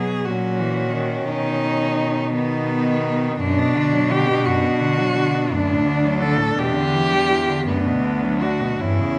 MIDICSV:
0, 0, Header, 1, 5, 480
1, 0, Start_track
1, 0, Tempo, 681818
1, 911, Time_signature, 6, 3, 24, 8
1, 911, Tempo, 705053
1, 4271, Tempo, 724638
1, 5231, Tempo, 762389
1, 6181, End_track
2, 0, Start_track
2, 0, Title_t, "Cello"
2, 0, Program_c, 0, 42
2, 0, Note_on_c, 0, 68, 91
2, 181, Note_on_c, 0, 66, 85
2, 191, Note_off_c, 0, 68, 0
2, 904, Note_off_c, 0, 66, 0
2, 909, Note_on_c, 0, 63, 104
2, 1616, Note_off_c, 0, 63, 0
2, 1627, Note_on_c, 0, 59, 110
2, 2337, Note_off_c, 0, 59, 0
2, 2341, Note_on_c, 0, 62, 115
2, 2832, Note_on_c, 0, 67, 112
2, 2842, Note_off_c, 0, 62, 0
2, 3066, Note_on_c, 0, 66, 108
2, 3076, Note_off_c, 0, 67, 0
2, 3795, Note_on_c, 0, 62, 107
2, 3805, Note_off_c, 0, 66, 0
2, 4264, Note_off_c, 0, 62, 0
2, 4268, Note_on_c, 0, 69, 107
2, 4509, Note_on_c, 0, 67, 124
2, 4519, Note_off_c, 0, 69, 0
2, 5222, Note_off_c, 0, 67, 0
2, 5226, Note_on_c, 0, 59, 106
2, 5694, Note_on_c, 0, 66, 92
2, 5704, Note_off_c, 0, 59, 0
2, 5940, Note_on_c, 0, 64, 97
2, 5950, Note_off_c, 0, 66, 0
2, 6181, Note_off_c, 0, 64, 0
2, 6181, End_track
3, 0, Start_track
3, 0, Title_t, "Cello"
3, 0, Program_c, 1, 42
3, 0, Note_on_c, 1, 59, 60
3, 185, Note_on_c, 1, 61, 68
3, 196, Note_off_c, 1, 59, 0
3, 1619, Note_off_c, 1, 61, 0
3, 1623, Note_on_c, 1, 63, 72
3, 2339, Note_off_c, 1, 63, 0
3, 2349, Note_on_c, 1, 62, 77
3, 5202, Note_off_c, 1, 62, 0
3, 5233, Note_on_c, 1, 62, 68
3, 5942, Note_on_c, 1, 61, 70
3, 5952, Note_off_c, 1, 62, 0
3, 6181, Note_off_c, 1, 61, 0
3, 6181, End_track
4, 0, Start_track
4, 0, Title_t, "Cello"
4, 0, Program_c, 2, 42
4, 0, Note_on_c, 2, 54, 62
4, 183, Note_off_c, 2, 54, 0
4, 188, Note_on_c, 2, 54, 67
4, 420, Note_on_c, 2, 52, 68
4, 431, Note_off_c, 2, 54, 0
4, 651, Note_off_c, 2, 52, 0
4, 655, Note_on_c, 2, 51, 64
4, 1607, Note_off_c, 2, 51, 0
4, 1623, Note_on_c, 2, 51, 76
4, 2339, Note_off_c, 2, 51, 0
4, 2353, Note_on_c, 2, 42, 77
4, 2468, Note_on_c, 2, 47, 70
4, 2478, Note_off_c, 2, 42, 0
4, 2591, Note_on_c, 2, 50, 68
4, 2602, Note_off_c, 2, 47, 0
4, 2704, Note_on_c, 2, 54, 71
4, 2714, Note_off_c, 2, 50, 0
4, 2830, Note_on_c, 2, 50, 81
4, 2840, Note_off_c, 2, 54, 0
4, 2943, Note_on_c, 2, 47, 72
4, 2953, Note_off_c, 2, 50, 0
4, 3064, Note_on_c, 2, 42, 75
4, 3074, Note_off_c, 2, 47, 0
4, 3177, Note_on_c, 2, 47, 66
4, 3188, Note_off_c, 2, 42, 0
4, 3305, Note_on_c, 2, 50, 76
4, 3315, Note_off_c, 2, 47, 0
4, 3432, Note_on_c, 2, 54, 65
4, 3442, Note_off_c, 2, 50, 0
4, 3550, Note_on_c, 2, 50, 66
4, 3561, Note_off_c, 2, 54, 0
4, 3669, Note_on_c, 2, 47, 72
4, 3679, Note_off_c, 2, 50, 0
4, 3785, Note_off_c, 2, 47, 0
4, 3789, Note_on_c, 2, 42, 76
4, 3908, Note_on_c, 2, 45, 67
4, 3918, Note_off_c, 2, 42, 0
4, 4025, Note_on_c, 2, 50, 69
4, 4035, Note_off_c, 2, 45, 0
4, 4144, Note_on_c, 2, 54, 74
4, 4154, Note_off_c, 2, 50, 0
4, 4262, Note_on_c, 2, 50, 82
4, 4273, Note_off_c, 2, 54, 0
4, 4377, Note_on_c, 2, 45, 70
4, 4386, Note_off_c, 2, 50, 0
4, 4494, Note_off_c, 2, 45, 0
4, 4498, Note_on_c, 2, 47, 72
4, 4617, Note_on_c, 2, 50, 67
4, 4627, Note_off_c, 2, 47, 0
4, 4737, Note_on_c, 2, 52, 72
4, 4747, Note_off_c, 2, 50, 0
4, 4860, Note_on_c, 2, 55, 65
4, 4869, Note_off_c, 2, 52, 0
4, 4981, Note_on_c, 2, 52, 64
4, 4991, Note_off_c, 2, 55, 0
4, 5102, Note_on_c, 2, 50, 71
4, 5112, Note_off_c, 2, 52, 0
4, 5223, Note_off_c, 2, 50, 0
4, 5227, Note_on_c, 2, 42, 73
4, 5346, Note_on_c, 2, 47, 65
4, 5355, Note_off_c, 2, 42, 0
4, 5458, Note_on_c, 2, 50, 66
4, 5468, Note_off_c, 2, 47, 0
4, 5582, Note_on_c, 2, 54, 65
4, 5592, Note_off_c, 2, 50, 0
4, 5700, Note_on_c, 2, 50, 69
4, 5709, Note_off_c, 2, 54, 0
4, 5815, Note_on_c, 2, 47, 61
4, 5825, Note_off_c, 2, 50, 0
4, 5936, Note_off_c, 2, 47, 0
4, 5940, Note_on_c, 2, 43, 70
4, 6065, Note_on_c, 2, 49, 60
4, 6074, Note_off_c, 2, 43, 0
4, 6181, Note_off_c, 2, 49, 0
4, 6181, End_track
5, 0, Start_track
5, 0, Title_t, "Cello"
5, 0, Program_c, 3, 42
5, 0, Note_on_c, 3, 47, 69
5, 190, Note_on_c, 3, 46, 68
5, 200, Note_off_c, 3, 47, 0
5, 902, Note_off_c, 3, 46, 0
5, 906, Note_on_c, 3, 47, 74
5, 2328, Note_off_c, 3, 47, 0
5, 2351, Note_on_c, 3, 47, 89
5, 3792, Note_on_c, 3, 38, 86
5, 3802, Note_off_c, 3, 47, 0
5, 4505, Note_off_c, 3, 38, 0
5, 4509, Note_on_c, 3, 40, 83
5, 5235, Note_on_c, 3, 38, 81
5, 5244, Note_off_c, 3, 40, 0
5, 5943, Note_on_c, 3, 40, 72
5, 5953, Note_off_c, 3, 38, 0
5, 6181, Note_off_c, 3, 40, 0
5, 6181, End_track
0, 0, End_of_file